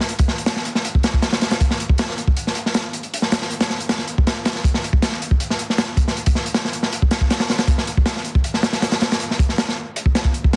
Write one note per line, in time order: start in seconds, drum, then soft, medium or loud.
0.00 snare medium
0.09 closed hi-hat medium
0.19 kick loud
0.19 closed hi-hat medium
0.28 snare soft
0.38 closed hi-hat medium
0.46 snare loud
0.46 closed hi-hat medium
0.56 snare medium
0.65 closed hi-hat medium
0.75 snare soft
0.85 closed hi-hat medium
0.95 kick medium
1.03 snare loud
1.03 closed hi-hat medium
1.14 kick medium
1.22 snare loud
1.22 closed hi-hat medium
1.33 snare loud
1.33 closed hi-hat medium
1.41 snare loud
1.41 closed hi-hat medium
1.51 snare loud
1.51 closed hi-hat medium
1.60 kick loud
1.60 closed hi-hat medium
1.71 snare medium
1.80 closed hi-hat medium
1.89 kick medium
1.98 snare loud
1.98 closed hi-hat medium
2.09 snare soft
2.18 closed hi-hat medium
2.27 kick medium
2.37 closed hi-hat medium
2.47 snare soft
2.55 closed hi-hat medium
2.66 snare soft
2.74 snare loud
2.74 closed hi-hat medium
2.93 closed hi-hat medium
3.03 closed hi-hat soft
3.14 closed hi-hat medium
3.22 snare soft
3.32 snare loud
3.32 closed hi-hat medium
3.42 snare medium
3.50 closed hi-hat medium
3.60 snare loud
3.60 closed hi-hat medium
3.70 snare medium
3.80 closed hi-hat medium
3.89 snare loud
3.89 closed hi-hat medium
3.98 snare soft
4.08 closed hi-hat medium
4.18 kick loud
4.27 snare loud
4.27 closed hi-hat medium
4.45 snare loud
4.45 closed hi-hat medium
4.55 snare soft
4.64 kick loud
4.64 closed hi-hat medium
4.74 snare medium
4.84 closed hi-hat medium
4.93 kick loud
5.02 snare loud
5.02 closed hi-hat medium
5.12 snare soft
5.22 closed hi-hat medium
5.31 kick medium
5.40 closed hi-hat medium
5.50 snare soft
5.59 closed hi-hat medium
5.70 snare soft
5.78 snare loud
5.78 closed hi-hat medium
5.97 kick medium
5.97 closed hi-hat medium
6.08 snare soft
6.17 closed hi-hat medium
6.26 kick loud
6.26 closed hi-hat medium
6.35 snare soft
6.46 closed hi-hat medium
6.54 snare loud
6.54 closed hi-hat medium
6.65 snare medium
6.73 closed hi-hat medium
6.83 snare soft
6.93 closed hi-hat medium
7.02 kick loud
7.11 snare loud
7.11 closed hi-hat medium
7.21 kick medium
7.30 snare loud
7.30 closed hi-hat medium
7.40 snare loud
7.40 closed hi-hat medium
7.50 snare loud
7.50 closed hi-hat medium
7.59 snare loud
7.59 closed hi-hat medium
7.68 kick loud
7.68 closed hi-hat medium
7.78 snare medium
7.87 closed hi-hat medium
7.97 kick medium
8.06 snare loud
8.06 closed hi-hat loud
8.17 snare soft
8.25 closed hi-hat medium
8.35 kick loud
8.44 closed hi-hat medium
8.54 snare soft
8.63 snare loud
8.63 closed hi-hat medium
8.73 snare loud
8.73 closed hi-hat medium
8.82 snare loud
8.82 closed hi-hat medium
8.92 snare loud
8.92 closed hi-hat medium
9.01 snare loud
9.01 closed hi-hat medium
9.11 snare loud
9.11 closed hi-hat medium
9.20 closed hi-hat medium
9.31 snare soft
9.39 kick loud
9.39 closed hi-hat medium
9.49 snare soft
9.58 snare loud
9.58 closed hi-hat medium
9.69 snare medium
9.96 closed hi-hat medium
10.06 kick medium
10.15 snare loud
10.15 closed hi-hat medium
10.25 kick loud
10.34 closed hi-hat medium
10.44 kick medium